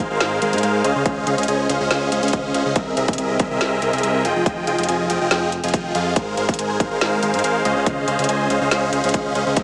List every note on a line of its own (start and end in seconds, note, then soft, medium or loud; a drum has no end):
0.10 0.19 G#1 loud
0.10 0.18 G#3 loud
0.10 0.18 G#4 medium
0.10 0.18 A#4 medium
0.10 0.18 C5 medium
0.10 0.18 F5 loud
0.20 0.40 G#1 loud
0.20 0.39 G#3 loud
0.20 0.39 G#4 medium
0.20 0.39 A#4 medium
0.20 0.39 C5 medium
0.20 0.39 F5 loud
0.20 snare loud
0.20 closed hi-hat medium
0.42 0.55 G#1 loud
0.42 0.51 G#3 medium
0.42 0.51 G#4 medium
0.42 0.51 A#4 medium
0.42 0.51 C5 medium
0.42 0.51 F5 loud
0.42 closed hi-hat medium
0.53 0.61 G#2 medium
0.53 0.62 G#3 loud
0.53 0.62 G#4 medium
0.53 0.62 A#4 medium
0.53 0.62 C5 medium
0.53 0.62 F5 loud
0.53 closed hi-hat medium
0.58 closed hi-hat medium
0.63 0.82 G#2 loud
0.63 0.82 G#3 loud
0.63 0.82 G#4 medium
0.63 0.82 A#4 medium
0.63 0.82 C5 medium
0.63 0.82 F5 loud
0.63 closed hi-hat medium
0.84 0.93 C#2 loud
0.84 0.93 C#4 loud
0.84 0.93 G#4 medium
0.84 0.93 C5 medium
0.84 0.93 D#5 medium
0.84 0.93 F5 loud
0.84 closed hi-hat medium
0.96 1.04 C#2 loud
0.96 1.03 C#4 medium
0.96 1.03 G#4 medium
0.96 1.03 C5 medium
0.96 1.03 D#5 medium
0.96 1.03 F5 medium
1.05 1.25 C#2 medium
1.05 1.24 C#4 medium
1.05 1.24 G#4 medium
1.05 1.24 C5 medium
1.05 1.24 D#5 medium
1.05 1.24 F5 medium
1.05 kick loud
1.05 closed hi-hat medium
1.27 1.36 C#2 loud
1.27 1.35 C#4 medium
1.27 1.35 G#4 medium
1.27 1.35 C5 medium
1.27 1.35 D#5 medium
1.27 1.35 F5 medium
1.27 closed hi-hat medium
1.38 1.46 C#2 loud
1.38 1.46 C#4 medium
1.38 1.46 G#4 medium
1.38 1.46 C5 medium
1.38 1.46 D#5 medium
1.38 1.46 F5 medium
1.38 closed hi-hat medium
1.43 closed hi-hat medium
1.48 1.67 C#2 loud
1.48 1.67 C#4 medium
1.48 1.67 G#4 medium
1.48 1.67 C5 medium
1.48 1.67 D#5 medium
1.48 1.67 G#5 medium
1.48 closed hi-hat medium
1.69 1.78 C#2 medium
1.69 1.78 C#4 medium
1.69 1.78 G#4 medium
1.69 1.78 C5 medium
1.69 1.78 D#5 medium
1.69 1.78 F5 loud
1.69 closed hi-hat medium
1.81 1.89 C#2 loud
1.81 1.88 C#4 loud
1.81 1.88 G#4 medium
1.81 1.88 C5 medium
1.81 1.88 D#5 medium
1.81 1.88 F5 loud
1.91 2.10 C#2 loud
1.91 2.10 C#4 loud
1.91 2.10 G#4 medium
1.91 2.10 C5 medium
1.91 2.10 D#5 medium
1.91 2.10 F5 loud
1.91 snare loud
1.91 closed hi-hat medium
2.12 2.21 C#2 loud
2.12 2.21 C#4 medium
2.12 2.21 G#4 medium
2.12 2.21 C5 medium
2.12 2.21 D#5 medium
2.12 2.21 F5 loud
2.12 closed hi-hat medium
2.23 2.31 C#2 medium
2.23 2.32 C#4 medium
2.23 2.32 G#4 medium
2.23 2.32 C5 medium
2.23 2.32 D#5 medium
2.23 2.32 F5 loud
2.23 closed hi-hat soft
2.28 closed hi-hat medium
2.33 2.53 C#2 loud
2.33 2.52 C#4 loud
2.33 2.52 G#4 medium
2.33 2.52 C5 medium
2.33 2.52 D#5 medium
2.33 2.52 F5 loud
2.33 kick loud
2.33 closed hi-hat medium
2.54 2.64 C#2 loud
2.54 2.63 C#4 loud
2.54 2.63 G#4 medium
2.54 2.63 C5 medium
2.54 2.63 D#5 medium
2.54 2.63 F5 loud
2.54 closed hi-hat medium
2.66 2.74 C#2 medium
2.66 2.73 C#4 medium
2.66 2.73 G#4 medium
2.66 2.73 C5 medium
2.66 2.73 D#5 medium
2.66 2.73 F5 medium
2.76 2.95 C2 loud
2.76 2.95 C4 medium
2.76 2.95 G#4 medium
2.76 2.95 A#4 medium
2.76 2.95 D#5 medium
2.76 2.95 E5 medium
2.76 kick loud
2.76 closed hi-hat medium
2.97 3.06 C2 loud
2.97 3.06 C4 medium
2.97 3.06 G#4 medium
2.97 3.06 A#4 medium
2.97 3.06 D#5 medium
2.97 3.06 E5 loud
2.97 closed hi-hat medium
3.08 3.16 C2 loud
3.08 3.16 C4 medium
3.08 3.16 G#4 medium
3.08 3.16 A#4 medium
3.08 3.16 D#5 medium
3.08 3.16 E5 medium
3.08 kick loud
3.08 closed hi-hat soft
3.13 closed hi-hat medium
3.18 3.38 C2 loud
3.18 3.37 C4 medium
3.18 3.37 G#4 medium
3.18 3.37 A#4 medium
3.18 3.37 D#5 medium
3.18 3.37 E5 medium
3.18 closed hi-hat medium
3.39 3.49 C2 loud
3.39 3.48 C4 medium
3.39 3.48 G#4 medium
3.39 3.48 A#4 medium
3.39 3.48 D#5 medium
3.39 3.48 E5 loud
3.39 kick loud
3.39 closed hi-hat medium
3.51 3.59 C2 loud
3.51 3.59 C4 loud
3.51 3.59 G#4 medium
3.51 3.59 A#4 medium
3.51 3.59 D#5 medium
3.51 3.59 E5 loud
3.61 3.80 C2 loud
3.61 3.80 C4 loud
3.61 3.80 G#4 medium
3.61 3.80 A#4 medium
3.61 3.80 D#5 loud
3.61 3.80 E5 loud
3.61 snare loud
3.61 closed hi-hat medium
3.82 3.91 C2 loud
3.82 3.92 C4 medium
3.82 3.92 G#4 medium
3.82 3.92 A#4 medium
3.82 3.92 D#5 medium
3.82 3.92 E5 loud
3.82 closed hi-hat medium
3.93 4.01 C2 medium
3.93 4.02 C4 medium
3.93 4.02 G#4 medium
3.93 4.02 A#4 medium
3.93 4.02 D#5 medium
3.93 4.02 E5 loud
3.93 closed hi-hat soft
3.98 closed hi-hat medium
4.03 4.26 C2 loud
4.03 4.22 C4 loud
4.03 4.22 G#4 medium
4.03 4.22 A#4 medium
4.03 4.22 D#5 medium
4.03 4.22 E5 loud
4.03 closed hi-hat medium
4.25 4.34 F1 loud
4.25 4.33 F3 loud
4.25 4.33 F4 medium
4.25 4.33 G#4 medium
4.25 4.33 D#5 medium
4.25 4.33 G5 loud
4.25 closed hi-hat medium
4.36 4.44 F1 medium
4.36 4.44 F3 medium
4.36 4.44 F4 medium
4.36 4.44 G#4 medium
4.36 4.44 D#5 medium
4.36 4.44 G5 medium
4.46 4.65 F1 loud
4.46 4.65 F3 medium
4.46 4.65 F4 medium
4.46 4.65 G#4 medium
4.46 4.65 D#5 medium
4.46 4.65 G5 medium
4.46 kick loud
4.46 closed hi-hat medium
4.67 4.76 F1 loud
4.67 4.76 F3 medium
4.67 4.76 F4 medium
4.67 4.76 G#4 medium
4.67 4.76 D#5 medium
4.67 4.76 G5 loud
4.67 closed hi-hat medium
4.78 4.87 F1 loud
4.78 4.86 F3 medium
4.78 4.86 F4 medium
4.78 4.86 G#4 medium
4.78 4.86 D#5 medium
4.78 4.86 G5 medium
4.78 closed hi-hat soft
4.83 closed hi-hat medium
4.89 5.08 F1 loud
4.89 5.08 F3 medium
4.89 5.08 F4 medium
4.89 5.08 G#4 medium
4.89 5.08 D#5 medium
4.89 5.08 G#5 medium
4.89 closed hi-hat medium
5.10 5.19 F1 medium
5.10 5.19 F3 medium
5.10 5.19 F4 medium
5.10 5.19 G#4 medium
5.10 5.19 D#5 medium
5.10 5.19 G5 loud
5.10 closed hi-hat medium
5.21 5.29 F1 loud
5.21 5.29 F3 medium
5.21 5.29 F4 medium
5.21 5.29 G#4 medium
5.21 5.29 D#5 medium
5.21 5.29 G5 loud
5.31 5.61 F1 loud
5.31 5.50 F3 loud
5.31 5.50 F4 medium
5.31 5.50 G#4 medium
5.31 5.50 D#5 medium
5.31 5.50 G5 loud
5.31 snare loud
5.31 closed hi-hat medium
5.52 closed hi-hat medium
5.64 5.72 F1 medium
5.64 5.71 F3 medium
5.64 5.71 F4 medium
5.64 5.71 G#4 medium
5.64 5.71 D#5 medium
5.64 5.71 G#5 medium
5.64 closed hi-hat medium
5.68 closed hi-hat medium
5.74 5.93 F1 medium
5.74 5.93 F3 medium
5.74 5.93 F4 medium
5.74 5.93 G#4 medium
5.74 5.93 D#5 medium
5.74 5.93 G5 loud
5.74 kick loud
5.74 closed hi-hat medium
5.95 6.14 F2 loud
5.95 6.14 F3 loud
5.95 6.14 F4 medium
5.95 6.14 G#4 medium
5.95 6.14 D#5 medium
5.95 6.14 F5 loud
5.95 closed hi-hat medium
6.16 6.36 G#1 medium
6.16 6.35 G#3 medium
6.16 6.35 G#4 medium
6.16 6.35 A#4 medium
6.16 6.35 C5 medium
6.16 6.35 F5 medium
6.16 kick loud
6.16 closed hi-hat medium
6.37 6.46 G#1 loud
6.37 6.46 G#3 medium
6.37 6.46 G#4 medium
6.37 6.46 A#4 medium
6.37 6.46 C5 medium
6.37 6.46 F5 medium
6.37 closed hi-hat medium
6.49 6.57 G#1 loud
6.49 6.56 G#3 medium
6.49 6.56 G#4 medium
6.49 6.56 A#4 medium
6.49 6.56 C5 medium
6.49 6.56 F5 medium
6.49 kick loud
6.49 closed hi-hat soft
6.54 closed hi-hat medium
6.59 6.78 G#1 loud
6.59 6.78 G#3 medium
6.59 6.78 G#4 medium
6.59 6.78 A#4 medium
6.59 6.78 C5 medium
6.59 6.78 G#5 medium
6.59 closed hi-hat medium
6.80 6.89 G#1 medium
6.80 6.89 G#3 medium
6.80 6.89 G#4 medium
6.80 6.89 A#4 medium
6.80 6.89 C5 medium
6.80 6.89 F5 loud
6.80 kick loud
6.80 closed hi-hat medium
6.91 6.99 G#1 loud
6.91 6.99 G#3 loud
6.91 6.99 G#4 medium
6.91 6.99 A#4 medium
6.91 6.99 C5 medium
6.91 6.99 F5 loud
7.01 7.21 G#1 loud
7.01 7.20 G#3 loud
7.01 7.20 G#4 loud
7.01 7.20 A#4 medium
7.01 7.20 C5 medium
7.01 7.20 F5 loud
7.01 snare loud
7.01 closed hi-hat medium
7.23 7.35 G#1 loud
7.23 7.32 G#3 medium
7.23 7.32 G#4 medium
7.23 7.32 A#4 medium
7.23 7.32 C5 medium
7.23 7.32 F5 loud
7.23 closed hi-hat medium
7.34 7.42 G#2 medium
7.34 7.42 G#3 medium
7.34 7.42 G#4 medium
7.34 7.42 A#4 medium
7.34 7.42 C5 medium
7.34 7.42 F5 loud
7.34 closed hi-hat soft
7.39 closed hi-hat medium
7.44 7.63 G#1 loud
7.44 7.63 G#3 loud
7.44 7.63 G#4 medium
7.44 7.63 A#4 medium
7.44 7.63 C5 medium
7.44 7.63 F5 loud
7.44 closed hi-hat medium
7.65 7.74 C#2 loud
7.65 7.74 C#4 loud
7.65 7.74 G#4 medium
7.65 7.74 C5 medium
7.65 7.74 D#5 medium
7.65 7.74 F5 loud
7.65 closed hi-hat medium
7.76 7.84 C#2 medium
7.76 7.84 C#4 medium
7.76 7.84 G#4 medium
7.76 7.84 C5 medium
7.76 7.84 D#5 medium
7.76 7.84 F5 medium
7.86 8.06 C#2 loud
7.86 8.05 C#4 medium
7.86 8.05 G#4 medium
7.86 8.05 C5 medium
7.86 8.05 D#5 medium
7.86 8.05 F5 medium
7.86 kick loud
7.86 closed hi-hat medium
8.08 8.17 C#2 loud
8.08 8.16 C#4 medium
8.08 8.16 G#4 medium
8.08 8.16 C5 medium
8.08 8.16 D#5 medium
8.08 8.16 F5 loud
8.08 closed hi-hat medium
8.19 8.27 C#2 loud
8.19 8.27 C#4 medium
8.19 8.27 G#4 medium
8.19 8.27 C5 medium
8.19 8.27 D#5 medium
8.19 8.27 F5 medium
8.19 closed hi-hat soft
8.24 closed hi-hat medium
8.29 8.48 C#2 loud
8.29 8.48 C#4 medium
8.29 8.48 G#4 medium
8.29 8.48 C5 medium
8.29 8.48 D#5 medium
8.29 8.48 G#5 medium
8.29 closed hi-hat medium
8.50 8.59 C#2 medium
8.50 8.59 C#4 medium
8.50 8.59 G#4 medium
8.50 8.59 C5 medium
8.50 8.59 D#5 medium
8.50 8.59 F5 loud
8.50 closed hi-hat medium
8.61 8.69 C#2 medium
8.61 8.69 C#4 medium
8.61 8.69 G#4 medium
8.61 8.69 C5 medium
8.61 8.69 D#5 medium
8.61 8.69 F5 loud
8.71 8.91 C#2 loud
8.71 8.90 C#4 loud
8.71 8.90 G#4 medium
8.71 8.90 C5 medium
8.71 8.90 D#5 medium
8.71 8.90 F5 loud
8.71 snare loud
8.71 closed hi-hat medium
8.92 9.02 C#2 loud
8.92 9.02 C#4 medium
8.92 9.02 G#4 medium
8.92 9.02 C5 medium
8.92 9.02 D#5 medium
8.92 9.02 F5 loud
8.92 closed hi-hat medium
9.04 9.12 C#2 medium
9.04 9.13 C#4 loud
9.04 9.13 G#4 medium
9.04 9.13 C5 medium
9.04 9.13 D#5 medium
9.04 9.13 F5 loud
9.04 closed hi-hat soft
9.09 closed hi-hat medium
9.14 9.33 C#2 loud
9.14 9.33 C#4 loud
9.14 9.33 G#4 medium
9.14 9.33 C5 medium
9.14 9.33 D#5 loud
9.14 9.33 F5 loud
9.14 kick loud
9.14 closed hi-hat medium
9.35 9.44 C#2 loud
9.35 9.44 C#4 medium
9.35 9.44 G#4 medium
9.35 9.44 C5 medium
9.35 9.44 D#5 medium
9.35 9.44 F5 loud
9.35 closed hi-hat medium
9.47 9.55 C#2 loud
9.47 9.54 C#4 medium
9.47 9.54 G#4 medium
9.47 9.54 C5 medium
9.47 9.54 D#5 medium
9.47 9.54 F5 medium
9.56 9.63 C2 loud
9.56 9.63 C4 medium
9.56 9.63 G#4 medium
9.56 9.63 A#4 medium
9.56 9.63 D#5 medium
9.56 9.63 E5 medium
9.56 kick loud
9.56 closed hi-hat medium